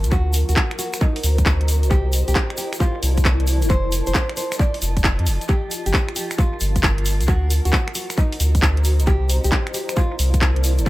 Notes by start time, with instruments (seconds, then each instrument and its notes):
Already playing: ambient pad F4 A#4 A5
0.04 sub bass D2, closed hi-hat, shaker
0.11 ambient pad F#4, nylon-string guitar F#4, kick, shaker
0.33 open hi-hat, shaker
0.49 sub bass D2, nylon-string guitar F#4, ambient pad C5, closed hi-hat, shaker
0.56 kick, clap
0.71 finger snap, closed hi-hat
0.79 nylon-string guitar F#4, open hi-hat, shaker
0.93 finger snap, closed hi-hat, shaker
1.01 nylon-string guitar D#4, kick
1.16 open hi-hat
1.23 sub bass D2, open hi-hat, shaker
1.38 kick, closed hi-hat, shaker
1.46 kick, clap, shaker
1.61 closed hi-hat
1.68 open hi-hat, shaker
1.83 sub bass C2, closed hi-hat, shaker
1.91 ambient pad E4, nylon-string guitar G4, kick, shaker
2.13 open hi-hat, shaker
2.26 sub bass C2, nylon-string guitar G4, ambient pad A#4, closed hi-hat, shaker
2.35 kick, clap
2.50 finger snap, closed hi-hat
2.57 nylon-string guitar G4, open hi-hat, shaker
2.62 ambient pad A5
2.73 finger snap, closed hi-hat, shaker
2.80 nylon-string guitar F4, kick, shaker
3.03 sub bass C2, open hi-hat, shaker
3.18 kick, closed hi-hat, shaker
3.25 kick, clap, shaker
3.40 closed hi-hat
3.47 ambient pad F4, open hi-hat, shaker
3.62 sub bass F1, closed hi-hat, shaker
3.69 nylon-string guitar C5, kick, shaker
3.79 ambient pad D#5
3.92 open hi-hat, shaker
4.07 sub bass F1, nylon-string guitar C5, closed hi-hat, shaker
4.15 kick, clap, shaker
4.29 finger snap, closed hi-hat
4.37 nylon-string guitar C5, open hi-hat, shaker
4.52 finger snap, closed hi-hat, shaker
4.59 nylon-string guitar D5, kick, shaker
4.74 open hi-hat
4.82 sub bass F1, open hi-hat, shaker
4.97 kick, closed hi-hat, shaker
5.04 kick, clap, shaker
5.19 sub bass F2, closed hi-hat
5.26 sub bass F1, open hi-hat, shaker
5.41 closed hi-hat, shaker
5.48 nylon-string guitar G4, kick, shaker
5.71 open hi-hat, shaker
5.86 sub bass G1, nylon-string guitar G4, closed hi-hat, shaker
5.92 ambient pad A#4, kick, clap, shaker
6.09 finger snap, closed hi-hat
6.16 nylon-string guitar G4, open hi-hat, shaker
6.31 finger snap, closed hi-hat, shaker
6.38 nylon-string guitar F4, kick, shaker
6.60 sub bass G1, open hi-hat, shaker
6.76 kick, closed hi-hat, shaker
6.83 kick, clap, shaker
6.98 closed hi-hat
7.06 open hi-hat, shaker
7.20 sub bass D2, closed hi-hat, shaker
7.27 ambient pad F#4, nylon-string guitar F#4, kick, shaker
7.50 open hi-hat, shaker
7.65 sub bass D2, nylon-string guitar F#4, ambient pad C5, closed hi-hat, shaker
7.73 kick, clap, shaker
7.88 finger snap, closed hi-hat
7.95 nylon-string guitar F#4, open hi-hat, shaker
8.10 finger snap, closed hi-hat, shaker
8.17 nylon-string guitar D#4, kick, shaker
8.32 open hi-hat
8.40 sub bass D2, open hi-hat, shaker
8.55 kick, closed hi-hat, shaker
8.62 kick, clap, shaker
8.77 closed hi-hat
8.84 open hi-hat, shaker
8.99 sub bass C2, closed hi-hat, shaker
9.07 ambient pad E4, nylon-string guitar G4, kick, shaker
9.29 open hi-hat, shaker
9.44 sub bass C2, nylon-string guitar G4, closed hi-hat, shaker
9.52 kick, clap, shaker
9.67 finger snap, closed hi-hat
9.74 nylon-string guitar G4, open hi-hat, shaker
9.79 ambient pad A5
9.89 finger snap, closed hi-hat, shaker
9.96 nylon-string guitar F4, kick, shaker
10.19 sub bass C2, open hi-hat, shaker
10.34 kick, closed hi-hat, shaker
10.41 kick, clap, shaker
10.56 closed hi-hat
10.64 ambient pad F4, open hi-hat, shaker
10.78 sub bass F1, closed hi-hat, shaker
10.86 nylon-string guitar F4, kick, shaker